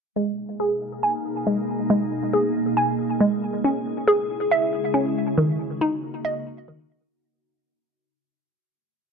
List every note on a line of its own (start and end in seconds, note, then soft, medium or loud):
0.16 3.61 B2 medium
0.16 1.46 G#3 medium
0.16 3.61 A#3 medium
0.16 3.61 D#4 medium
0.16 3.61 G#4 medium
0.60 2.32 G#4 medium
1.03 2.76 G#5 loud
1.47 1.89 G#3 medium
1.90 3.19 G#3 medium
2.33 3.64 G#4 medium
2.77 3.64 G#5 loud
3.21 3.64 G#3 medium
3.64 7.08 C#3 medium
3.64 5.36 G#3 medium
3.64 4.93 C#4 medium
3.64 5.36 E4 medium
3.64 5.36 G#4 medium
4.08 5.38 G#4 loud
4.51 5.38 E5 medium
4.94 5.38 C#4 medium
5.38 6.67 D#3 medium
5.38 7.10 A#3 medium
5.38 7.10 D#4 medium
5.38 7.10 F#4 medium
5.81 7.12 D#4 medium
6.25 7.12 D#5 loud
6.68 7.12 D#3 medium